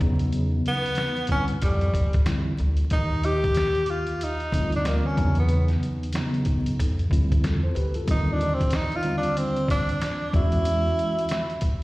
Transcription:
0.00 0.58 E2 loud
0.00 1.05 C#3 loud
0.00 1.05 F#3 loud
0.00 1.05 B3 medium
0.00 1.06 D#4 loud
0.00 kick medium
0.00 closed hi-hat medium
0.19 closed hi-hat soft
0.33 closed hi-hat medium
0.66 1.27 B3 loud
0.66 closed hi-hat medium
0.86 closed hi-hat soft
0.95 snare loud
0.95 closed hi-hat medium
1.17 closed hi-hat soft
1.27 1.54 D3 medium
1.27 1.54 G3 medium
1.27 1.55 C4 medium
1.27 1.55 E4 medium
1.27 kick medium
1.27 closed hi-hat medium
1.31 1.45 C#4 loud
1.48 closed hi-hat medium
1.62 1.91 F2 loud
1.62 2.23 G3 medium
1.62 kick medium
1.62 closed hi-hat medium
1.81 closed hi-hat soft
1.94 2.23 D2 medium
1.94 kick medium
1.94 closed hi-hat medium
2.13 kick medium
2.13 closed hi-hat soft
2.26 2.56 E2 medium
2.26 2.51 D3 medium
2.26 2.51 G3 medium
2.26 2.52 C4 medium
2.26 2.52 E4 medium
2.26 snare loud
2.26 closed hi-hat medium
2.58 2.88 D2 loud
2.58 closed hi-hat medium
2.77 closed hi-hat soft
2.90 4.16 D#2 loud
2.90 3.27 D#4 loud
2.90 kick loud
2.90 closed hi-hat medium
3.23 3.92 G4 loud
3.23 closed hi-hat medium
3.44 kick loud
3.44 closed hi-hat soft
3.55 snare loud
3.55 closed hi-hat medium
3.75 closed hi-hat soft
3.86 closed hi-hat medium
3.90 4.25 F4 medium
4.07 closed hi-hat medium
4.21 4.74 D#4 loud
4.21 closed hi-hat medium
4.40 closed hi-hat soft
4.52 4.99 D2 medium
4.52 5.17 D3 medium
4.52 5.17 G3 medium
4.52 5.17 C4 medium
4.52 4.61 D#4 medium
4.52 kick medium
4.52 closed hi-hat loud
4.60 5.21 F4 medium
4.72 4.89 D4 medium
4.72 closed hi-hat medium
4.85 5.07 A#3 medium
4.85 snare loud
4.85 closed hi-hat medium
5.06 5.38 C#4 medium
5.16 5.75 E2 loud
5.16 5.97 C#3 medium
5.16 5.97 F#3 medium
5.16 5.98 B3 medium
5.16 5.26 D4 medium
5.16 kick loud
5.16 closed hi-hat medium
5.25 6.01 D#4 medium
5.35 5.68 B3 medium
5.35 closed hi-hat medium
5.49 closed hi-hat medium
5.68 snare soft
5.68 closed hi-hat soft
5.83 closed hi-hat medium
6.03 closed hi-hat soft
6.13 6.78 C#3 medium
6.13 6.79 F#3 medium
6.13 6.79 B3 medium
6.13 6.79 D#4 loud
6.13 snare loud
6.13 closed hi-hat medium
6.34 closed hi-hat soft
6.45 kick medium
6.45 closed hi-hat medium
6.66 closed hi-hat medium
6.79 7.08 F2 loud
6.79 kick medium
6.79 closed hi-hat medium
6.99 closed hi-hat soft
7.10 7.39 D2 medium
7.10 7.58 D3 medium
7.10 7.59 G3 medium
7.10 7.59 C4 medium
7.10 7.44 E4 medium
7.10 kick loud
7.10 closed hi-hat loud
7.32 kick medium
7.32 closed hi-hat medium
7.44 7.72 E2 medium
7.44 7.62 F4 medium
7.44 7.62 A4 medium
7.44 snare loud
7.44 closed hi-hat medium
7.64 7.75 A4 soft
7.64 7.75 C5 medium
7.75 8.04 D2 medium
7.75 7.94 G4 medium
7.75 7.94 B4 medium
7.75 closed hi-hat medium
7.94 8.07 F4 medium
7.94 8.26 A4 medium
7.94 closed hi-hat medium
8.06 10.17 D#2 medium
8.06 8.55 D3 medium
8.06 8.55 G3 soft
8.06 8.56 C4 medium
8.06 8.56 F4 medium
8.06 kick loud
8.06 closed hi-hat medium
8.11 8.34 D#4 loud
8.33 8.56 D4 medium
8.41 closed hi-hat medium
8.54 8.77 C4 medium
8.60 kick medium
8.60 closed hi-hat medium
8.70 snare loud
8.70 closed hi-hat medium
8.76 8.98 D#4 medium
8.92 closed hi-hat soft
8.96 9.16 F4 loud
9.03 9.95 D3 medium
9.03 9.96 G3 medium
9.03 9.96 C4 medium
9.03 9.97 F4 medium
9.03 closed hi-hat medium
9.18 9.40 D4 medium
9.23 closed hi-hat medium
9.37 9.70 C4 loud
9.37 closed hi-hat loud
9.57 closed hi-hat soft
9.69 10.30 D4 loud
9.69 kick loud
9.69 closed hi-hat medium
9.89 closed hi-hat medium
10.01 snare loud
10.01 closed hi-hat medium
10.32 10.91 E2 loud
10.32 11.37 E3 medium
10.32 11.38 G#3 medium
10.32 11.38 C#4 medium
10.32 11.83 E4 loud
10.32 11.39 F#4 loud
10.32 kick loud
10.32 closed hi-hat medium
10.52 closed hi-hat medium
10.65 closed hi-hat medium
10.99 closed hi-hat medium
11.19 closed hi-hat medium
11.29 snare loud
11.29 closed hi-hat medium
11.50 closed hi-hat soft
11.61 kick medium
11.61 closed hi-hat medium

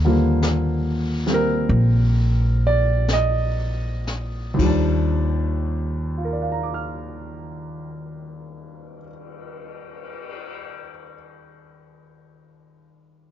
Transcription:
0.00 1.65 D#2 medium
0.00 1.34 A#4 medium
0.05 4.58 D3 soft
0.05 4.58 F3 soft
0.05 1.25 G3 soft
0.05 1.26 A#3 medium
0.43 brush sweep soft
0.43 snare soft
0.43 hi-hat pedal soft
1.26 4.58 G3 soft
1.26 4.58 A#3 soft
1.26 4.59 C4 medium
1.26 snare soft
1.34 2.61 A#4 medium
1.69 4.54 A#1 medium
1.69 brush sweep soft
2.67 3.08 D5 medium
3.08 brush sweep soft
3.08 snare soft
3.08 hi-hat pedal soft
3.13 3.72 D#5 medium
4.07 snare soft
4.54 8.97 D#2 medium
4.54 9.00 D#3 medium
4.59 8.98 D#2 medium
4.59 9.03 F3 medium
4.59 9.05 G3 medium
4.59 kick soft
4.59 crash soft
4.65 9.08 D4 medium
5.67 cymbal swell soft
6.18 10.57 F4 soft
6.25 10.64 A#4 soft
6.33 10.72 D5 soft
6.42 10.81 F5 soft
6.52 10.91 A#5 soft
6.63 11.02 D6 soft
6.74 11.13 F6 soft

